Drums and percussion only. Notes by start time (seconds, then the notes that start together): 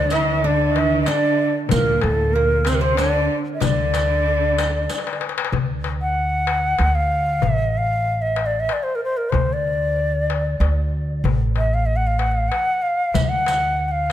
0.10 riq, darbuka tek
0.76 darbuka tek
1.06 riq, darbuka tek
1.69 riq, darbuka dum
2.01 darbuka tek
2.65 riq, darbuka tek
2.97 riq, darbuka tek
3.61 riq, darbuka dum
3.94 riq, darbuka tek
4.26 darbuka ka
4.58 riq, darbuka tek
4.89 riq, darbuka tek
4.98 darbuka ka
5.07 darbuka tek
5.13 darbuka ka
5.21 darbuka tek
5.29 darbuka ka
5.38 darbuka tek
5.45 darbuka ka
5.53 darbuka dum
5.84 darbuka tek
6.16 darbuka ka
6.47 darbuka tek
6.79 darbuka tek
7.42 darbuka dum
8.06 darbuka ka
8.36 darbuka tek
8.69 darbuka tek
9.32 darbuka dum
9.98 darbuka ka
10.30 darbuka tek
10.61 darbuka tek
11.25 darbuka dum
11.56 darbuka tek
12.19 darbuka tek
12.52 darbuka tek
13.14 riq, darbuka dum
13.46 riq, darbuka tek
13.79 darbuka ka